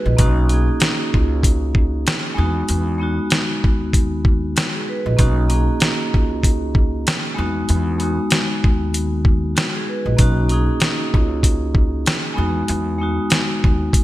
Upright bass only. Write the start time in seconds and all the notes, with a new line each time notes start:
0.05 A#1
0.19 B1
1.14 C#2
2.38 E2
2.69 E2
3.64 D#2
5.06 A#1
5.19 B1
6.14 C#2
7.38 E2
7.70 E2
8.64 D#2
10.06 A#1
10.19 B1
11.14 C#2
12.38 E2
12.69 E2
13.64 D#2